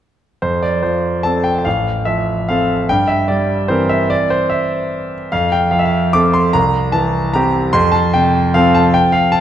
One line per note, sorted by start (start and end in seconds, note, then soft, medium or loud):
0.42 1.62 F2 soft
0.42 0.62 C5 medium
0.63 0.83 D5 medium
0.83 1.50 F3 soft
0.83 1.24 C5 medium
1.23 1.62 C4 soft
1.23 1.62 A4 soft
1.23 1.45 A5 medium
1.44 1.57 G5 medium
1.58 1.65 G5 soft
1.65 2.84 A1 soft
1.65 2.05 F5 medium
2.05 2.73 F3 soft
2.05 2.48 E5 medium
2.49 2.85 C4 soft
2.49 2.85 A4 soft
2.49 2.88 F5 medium
2.89 4.08 G2 medium
2.89 3.08 G5 medium
3.08 3.28 E5 medium
3.28 3.96 G3 soft
3.28 3.69 D5 medium
3.68 5.28 E3 soft
3.68 5.28 C4 soft
3.68 5.29 A#4 soft
3.68 3.90 C5 medium
3.89 4.10 E5 medium
4.10 4.30 D5 medium
4.30 4.50 C5 medium
4.50 5.12 E5 medium
5.32 6.50 F2 medium
5.32 5.52 F5 medium
5.52 5.72 G5 medium
5.71 6.37 F3 soft
5.71 5.78 F5 medium
5.79 5.86 E5 medium
5.85 6.13 F5 medium
6.13 6.50 C4 soft
6.13 6.50 A4 soft
6.13 6.34 D6 medium
6.34 6.53 C6 medium
6.53 7.71 C2 medium
6.53 6.94 A#5 medium
6.92 7.58 E3 soft
6.92 7.34 A5 medium
7.34 7.70 C4 soft
7.34 7.70 G4 medium
7.34 7.73 A#5 medium
7.73 8.89 F2 medium
7.73 7.93 C6 medium
7.92 8.12 A5 medium
8.14 8.78 C3 soft
8.14 8.54 G5 medium
8.54 9.40 F3 soft
8.54 9.40 C4 medium
8.54 9.40 A4 medium
8.54 8.74 F5 medium
8.75 8.93 A5 medium
8.94 9.13 G5 medium
9.12 9.32 F5 medium
9.32 9.40 A5 medium